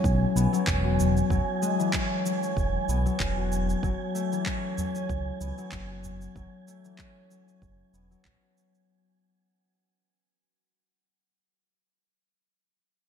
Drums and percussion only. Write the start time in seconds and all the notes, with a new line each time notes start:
0.04 kick, shaker
0.37 shaker
0.54 shaker
0.67 kick, clap, shaker
0.99 udu, shaker
1.17 shaker
1.30 kick, shaker
1.63 shaker
1.80 shaker
1.93 kick, clap, shaker
2.26 shaker
2.43 shaker
2.57 kick, shaker
2.89 shaker
3.06 shaker
3.20 kick, clap, shaker
3.52 shaker
3.69 shaker
3.83 kick, shaker
4.16 shaker
4.33 shaker
4.46 kick, clap, shaker
4.78 udu, shaker
4.95 shaker
5.09 kick, shaker
5.41 shaker
5.58 shaker
5.72 kick, clap, shaker
6.04 udu, shaker
6.21 shaker
6.36 kick, shaker
6.68 shaker
6.85 shaker
6.99 kick, clap, shaker
7.31 shaker
7.48 shaker
7.62 kick, shaker
7.94 shaker
8.12 shaker
8.25 kick, clap, shaker
8.57 shaker
8.75 shaker